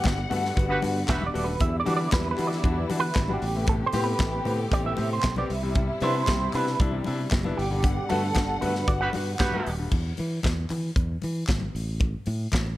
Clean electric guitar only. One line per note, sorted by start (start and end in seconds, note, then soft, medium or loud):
0.00 0.19 G4 medium
1.09 1.26 E5 loud
1.26 1.44 D5 medium
1.44 1.62 B4 medium
1.61 1.79 E5 medium
1.80 1.95 D5 medium
1.96 2.12 D5 medium
2.14 2.29 B4 medium
2.31 2.47 B4 medium
2.47 2.99 D5 medium
3.00 3.32 B4 loud
3.33 3.66 G4 medium
3.69 3.74 A4 medium
3.86 4.03 C5 loud
4.04 4.52 B4 medium
4.73 4.86 D5 medium
4.86 5.12 E5 loud
5.13 5.38 C5 medium
5.38 5.51 D5 medium
5.51 6.03 E5 medium
6.03 6.55 C5 loud
6.55 6.79 B4 medium
7.57 8.09 G4 medium
8.09 8.61 A4 medium
8.61 8.88 B4 medium
8.88 8.93 D5 loud
9.01 9.49 F#5 loud